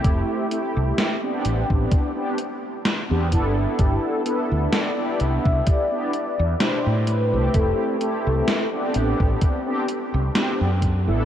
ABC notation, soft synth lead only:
X:1
M:4/4
L:1/8
Q:"Swing 16ths" 1/4=64
K:Ador
V:1 name="Soft synth lead"
z8 | G B d e d2 c B | A4 z4 |]